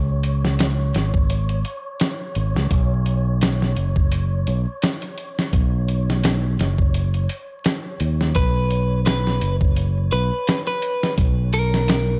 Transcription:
0.00 0.91 C#2 medium
0.00 12.20 C#5 medium
0.23 closed hi-hat medium
0.45 snare soft
0.59 snare loud
0.59 closed hi-hat medium
0.94 1.62 G#1 medium
0.94 snare soft
0.94 closed hi-hat medium
1.14 kick medium
1.30 closed hi-hat medium
1.49 closed hi-hat soft
1.65 closed hi-hat medium
2.00 snare loud
2.00 closed hi-hat medium
2.35 2.53 G#1 medium
2.35 closed hi-hat medium
2.55 2.69 C#2 medium
2.55 snare soft
2.71 3.74 B1 medium
2.71 kick medium
2.71 closed hi-hat medium
3.06 closed hi-hat medium
3.41 snare loud
3.41 closed hi-hat medium
3.62 snare soft
3.76 4.44 F#1 medium
3.76 closed hi-hat medium
3.96 kick medium
4.12 closed hi-hat medium
4.47 4.65 B1 medium
4.47 closed hi-hat medium
4.82 snare loud
4.82 closed hi-hat medium
5.02 closed hi-hat soft
5.18 closed hi-hat medium
5.39 snare medium
5.53 6.56 B1 medium
5.53 kick loud
5.53 closed hi-hat medium
5.88 closed hi-hat medium
6.10 snare soft
6.23 snare loud
6.23 closed hi-hat medium
6.59 7.27 F#1 medium
6.59 snare soft
6.59 closed hi-hat medium
6.78 kick medium
6.94 closed hi-hat medium
7.14 closed hi-hat soft
7.29 closed hi-hat medium
7.64 snare loud
7.64 closed hi-hat medium
8.00 8.32 D#2 medium
8.00 closed hi-hat medium
8.21 snare soft
8.35 9.38 B1 medium
8.35 9.00 B4 medium
8.35 kick loud
8.35 closed hi-hat medium
8.71 closed hi-hat medium
9.06 9.55 B4 medium
9.06 snare loud
9.06 closed hi-hat medium
9.27 snare soft
9.41 10.09 F#1 medium
9.41 closed hi-hat medium
9.61 kick medium
9.76 closed hi-hat medium
10.12 10.30 B1 medium
10.12 10.61 B4 medium
10.12 closed hi-hat medium
10.47 snare loud
10.47 closed hi-hat medium
10.67 11.14 B4 medium
10.67 closed hi-hat soft
10.82 closed hi-hat medium
11.03 snare medium
11.18 12.20 B1 medium
11.18 kick loud
11.18 closed hi-hat medium
11.53 12.18 A#4 medium
11.53 closed hi-hat medium
11.74 snare soft
11.88 snare loud
11.88 closed hi-hat medium

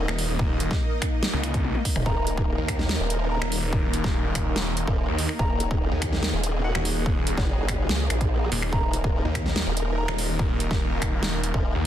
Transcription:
0.00 11.87 A#3 medium
0.00 11.87 D#4 medium
0.00 2.05 D#5 medium
0.08 0.27 D#1 loud
0.08 finger snap medium
0.18 open hi-hat medium
0.29 0.69 D#1 loud
0.39 kick loud
0.60 closed hi-hat medium
0.71 kick loud
0.71 snare soft
1.02 finger snap medium
1.02 kick medium
1.02 closed hi-hat medium
1.23 snare loud
1.33 1.73 C#2 loud
1.43 finger snap medium
1.43 closed hi-hat medium
1.54 kick loud
1.54 closed hi-hat soft
1.64 high tom medium
1.75 high tom medium
1.85 kick medium
1.85 open hi-hat medium
1.96 2.04 D#1 loud
1.96 finger snap medium
1.96 mid tom medium
2.06 2.46 D#1 loud
2.06 2.60 A#4 medium
2.06 5.38 A#4 medium
2.06 2.60 A#5 loud
2.06 kick loud
2.27 closed hi-hat medium
2.37 kick loud
2.48 2.57 D#1 medium
2.58 2.98 D#2 medium
2.68 finger snap medium
2.68 kick medium
2.68 closed hi-hat medium
2.79 snare soft
2.89 snare loud
3.00 3.40 D#1 loud
3.10 closed hi-hat medium
3.31 5.31 A#4 medium
3.31 5.31 A#5 medium
3.42 3.61 D#1 loud
3.42 finger snap medium
3.52 open hi-hat loud
3.62 4.02 D#1 loud
3.73 kick loud
3.93 closed hi-hat medium
4.04 4.86 D#1 loud
4.04 kick loud
4.04 snare soft
4.35 finger snap medium
4.35 kick medium
4.35 closed hi-hat medium
4.56 snare loud
4.77 closed hi-hat medium
4.87 5.07 D#1 loud
4.87 kick loud
5.08 5.27 D#2 loud
5.18 open hi-hat medium
5.29 finger snap medium
5.39 5.79 D#1 loud
5.39 8.71 G#4 medium
5.39 5.94 A#4 medium
5.39 5.94 A#5 loud
5.39 kick loud
5.60 closed hi-hat medium
5.71 kick loud
5.81 5.90 D#1 loud
5.92 6.32 D#2 loud
6.02 finger snap medium
6.02 kick medium
6.02 closed hi-hat medium
6.13 snare soft
6.23 snare loud
6.33 6.73 D#1 loud
6.44 closed hi-hat medium
6.64 8.64 F#4 medium
6.64 8.65 F#5 medium
6.75 6.94 D#1 loud
6.75 finger snap medium
6.85 open hi-hat medium
6.96 7.36 D#1 loud
7.06 kick loud
7.27 closed hi-hat medium
7.38 7.57 F#1 loud
7.38 kick loud
7.38 snare soft
7.58 7.88 F#1 loud
7.68 finger snap medium
7.68 kick medium
7.68 closed hi-hat medium
7.89 8.09 C#2 loud
7.89 snare loud
8.10 8.50 A#1 loud
8.10 finger snap medium
8.10 closed hi-hat medium
8.21 kick loud
8.21 closed hi-hat soft
8.52 8.71 D#1 loud
8.52 open hi-hat medium
8.62 finger snap medium
8.73 9.13 D#1 loud
8.73 9.27 A#4 medium
8.73 11.87 A#4 medium
8.73 9.27 A#5 loud
8.73 kick loud
8.93 closed hi-hat medium
9.04 kick loud
9.14 9.23 D#1 loud
9.25 9.65 D#2 loud
9.35 finger snap medium
9.35 kick medium
9.35 closed hi-hat medium
9.46 snare soft
9.56 snare loud
9.67 10.07 D#1 loud
9.77 closed hi-hat medium
9.98 11.87 A#4 medium
9.98 11.87 A#5 loud
10.08 10.27 D#1 loud
10.08 finger snap medium
10.18 open hi-hat medium
10.29 10.69 D#1 loud
10.39 kick loud
10.60 closed hi-hat medium
10.71 11.52 D#1 loud
10.71 kick loud
10.71 snare soft
11.02 finger snap medium
11.02 kick medium
11.02 closed hi-hat medium
11.23 snare loud
11.44 closed hi-hat medium
11.54 11.73 D#1 loud
11.54 kick loud
11.75 11.87 D#2 loud

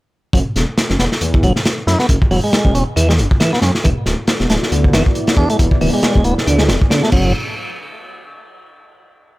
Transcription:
0.33 0.42 F#1 loud
0.33 0.39 F#3 medium
0.33 kick loud
0.33 closed hi-hat medium
0.56 0.64 E1 loud
0.56 snare soft
0.56 closed hi-hat medium
0.78 snare loud
0.78 closed hi-hat medium
0.90 0.96 F#1 loud
0.90 snare soft
0.99 1.08 E1 medium
0.99 1.05 B3 medium
0.99 snare soft
0.99 closed hi-hat medium
1.12 snare soft
1.21 1.45 E2 medium
1.21 closed hi-hat medium
1.34 kick loud
1.43 1.51 F#1 loud
1.43 1.53 F#3 loud
1.43 kick medium
1.43 closed hi-hat medium
1.56 snare soft
1.65 snare loud
1.65 closed hi-hat medium
1.87 1.95 F#2 loud
1.87 1.98 E4 medium
1.87 snare soft
1.87 closed hi-hat medium
1.99 2.07 B3 loud
1.99 snare soft
2.09 2.17 F#1 loud
2.09 kick loud
2.09 closed hi-hat loud
2.22 kick loud
2.31 2.39 E1 loud
2.31 2.40 F#3 loud
2.31 open hi-hat medium
2.44 2.74 G#3 medium
2.53 snare loud
2.53 closed hi-hat medium
2.65 2.71 F#1 loud
2.65 kick medium
2.75 2.83 E1 medium
2.75 2.84 C#4 medium
2.75 closed hi-hat medium
2.96 3.20 E2 medium
2.96 3.08 E3 loud
2.96 closed hi-hat medium
3.09 3.13 G#3 loud
3.09 snare medium
3.18 3.27 F#1 loud
3.18 closed hi-hat medium
3.31 kick medium
3.40 3.52 E3 medium
3.40 snare loud
3.40 closed hi-hat medium
3.53 3.60 B3 loud
3.53 snare soft
3.62 3.70 F#2 medium
3.62 3.72 C#4 medium
3.62 snare medium
3.62 closed hi-hat medium
3.75 snare medium
3.84 3.93 E1 loud
3.84 3.90 E3 medium
3.84 7.10 B3 medium
3.84 7.10 E4 medium
3.84 5.58 F#4 medium
3.84 7.10 D5 medium
3.84 kick loud
3.84 closed hi-hat medium
4.06 4.14 D1 loud
4.06 snare soft
4.06 closed hi-hat medium
4.27 snare loud
4.27 closed hi-hat medium
4.40 4.46 E1 loud
4.40 snare soft
4.50 4.58 D1 medium
4.50 4.55 A3 medium
4.50 snare medium
4.50 closed hi-hat medium
4.63 snare soft
4.71 4.95 D2 medium
4.71 closed hi-hat medium
4.84 kick medium
4.93 5.02 E1 loud
4.93 5.03 E3 loud
4.93 snare loud
4.93 closed hi-hat medium
5.06 kick medium
5.15 closed hi-hat medium
5.27 snare loud
5.27 closed hi-hat medium
5.37 5.45 E2 loud
5.37 5.49 D4 medium
5.37 kick medium
5.50 5.57 A3 loud
5.50 closed hi-hat medium
5.59 5.68 E1 loud
5.59 7.11 G#4 medium
5.59 kick loud
5.59 closed hi-hat medium
5.71 kick loud
5.81 5.89 D1 loud
5.81 5.91 E3 loud
5.81 open hi-hat medium
5.94 6.24 G#3 medium
6.03 snare loud
6.03 closed hi-hat medium
6.15 6.22 E1 loud
6.15 kick medium
6.24 6.33 D1 medium
6.24 6.34 B3 medium
6.24 closed hi-hat medium
6.38 snare soft
6.47 6.70 D2 medium
6.47 6.59 D3 loud
6.47 closed hi-hat medium
6.58 6.64 G#3 loud
6.58 snare medium
6.68 6.77 E1 loud
6.68 snare loud
6.68 closed hi-hat medium
6.82 kick medium
6.90 7.03 D3 medium
6.90 snare loud
6.90 closed hi-hat loud
7.03 7.10 A3 loud
7.03 snare soft
7.12 7.33 F#1 loud
7.12 7.33 F#3 medium
7.12 kick loud
7.12 crash medium

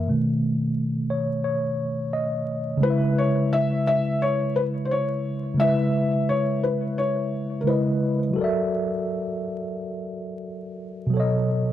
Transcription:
0.08 1.07 B2 medium
0.08 1.08 D#3 soft
0.08 1.08 A3 medium
1.10 1.43 C#5 medium
1.44 2.16 C#5 medium
2.13 2.64 D#5 medium
2.77 5.52 C#3 medium
2.77 5.54 G#3 medium
2.83 5.56 E4 medium
2.83 3.19 B4 loud
2.83 5.57 B4 medium
2.90 5.59 E5 medium
3.18 3.54 C#5 medium
3.53 3.86 E5 loud
3.87 4.23 E5 loud
4.22 4.54 C#5 medium
4.56 4.62 B4 medium
4.85 4.91 C5 medium
4.91 5.62 C#5 medium
5.54 7.60 C#3 medium
5.54 7.61 G#3 medium
5.60 7.63 E4 medium
5.60 6.31 E5 loud
5.64 7.65 B4 medium
5.64 7.66 E5 medium
6.29 6.61 C#5 medium
6.63 6.99 B4 medium
6.98 7.63 C#5 medium
7.61 8.34 C#3 soft
7.61 7.67 A#4 medium
7.65 8.35 G#3 soft
7.65 8.36 E4 soft
7.65 8.17 B4 medium
7.65 8.36 B4 medium
7.70 8.37 D#5 medium
8.31 11.05 F#3 medium
8.31 11.06 F#4 medium
8.36 11.08 A4 medium
8.36 11.09 A#4 medium
8.41 11.10 D5 medium
8.41 11.12 E5 medium
11.07 11.73 B2 medium
11.07 11.73 F#3 medium
11.14 11.73 A4 medium
11.14 11.73 C#5 medium
11.20 11.73 D#5 medium

